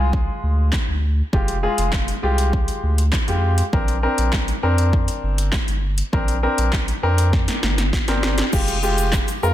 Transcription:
Already playing: sub bass C2, grand piano G#3 F4 G#4
0.13 kick
0.43 sub bass D2
0.72 kick, snare, clap
0.88 sub bass D2
1.33 sub bass F1, grand piano G#3 F4 G4, kick
1.48 closed hi-hat
1.63 grand piano G#3 F4 G#4
1.78 sub bass F1, closed hi-hat
1.92 kick, snare, clap
2.08 closed hi-hat
2.23 sub bass C2, grand piano G#3 F4 G4
2.38 closed hi-hat
2.53 kick
2.68 closed hi-hat
2.83 sub bass D2
2.98 closed hi-hat
3.12 kick, snare, clap
3.28 sub bass F2, grand piano G#3 F4 G4, closed hi-hat
3.58 closed hi-hat
3.73 sub bass A#1, grand piano C4 D4 A#4, kick
3.88 closed hi-hat
4.03 grand piano C4 D4 A#4
4.18 sub bass A#1, closed hi-hat
4.32 kick, snare, clap
4.48 closed hi-hat
4.63 sub bass F2, grand piano C4 D4 A#4
4.78 closed hi-hat
4.93 kick
5.08 closed hi-hat
5.23 sub bass G1
5.38 closed hi-hat
5.52 kick, snare, clap
5.68 sub bass G1, closed hi-hat
5.98 closed hi-hat
6.13 sub bass A#1, grand piano C4 D4 A#4, kick
6.28 closed hi-hat
6.43 grand piano C4 D4 A#4
6.58 sub bass A#1, closed hi-hat
6.72 kick, snare, clap
6.88 closed hi-hat
7.03 sub bass F2, grand piano C4 D4 A#4
7.18 closed hi-hat
7.33 kick, snare
7.48 snare, closed hi-hat
7.63 sub bass G1, snare
7.78 snare, closed hi-hat
7.93 kick, snare
8.08 sub bass G1, grand piano C4 D4 A#4, snare, closed hi-hat
8.23 snare
8.38 snare, closed hi-hat
8.53 sub bass F1, grand piano G#3 F4 G4, kick, crash, shaker
8.68 closed hi-hat, shaker
8.83 grand piano G#3 F4 G4, shaker
8.98 closed hi-hat, shaker
9.12 kick, snare, clap, shaker
9.28 closed hi-hat, shaker
9.43 sub bass F2, grand piano G#3 F4 A#4, shaker

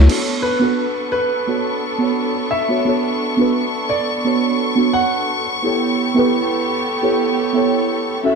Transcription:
Already playing: synth stab A3 C#4 E4 F#4 C#5
0.01 snare
0.07 synth stab B3 D4 F#4 A4 C#5, string section B3 D4 A4 C#6, crash
0.42 grand piano B4
0.59 synth stab B3 D4 F#4 A4 B4
1.12 grand piano B4
1.47 synth stab B3 D4 F#4 A4 C#5
1.98 synth stab B3 D4 F#4 A4 C#5
2.51 grand piano E5
2.69 synth stab B3 D4 F#4 A4 C#5
2.85 synth stab B3 D4 F#4 A4 C#5
3.37 synth stab B3 D4 F#4 A4 B4
3.89 grand piano D5
4.25 synth stab B3 D4 F#4 A4 C#5
4.76 synth stab B3 D4 F#4 A4 C#5
4.93 grand piano F#5
5.62 synth stab B3 E4 G4 A4 C#5, string section B3 G4 A4
6.14 synth stab B3 E4 G4 A4 B4
7.02 synth stab B3 E4 G4 A4 C#5
7.53 synth stab B3 E4 G4 A4 C#5
8.24 synth stab C#4 E4 F#4 A4 E5, string section C#4 F#4 E5

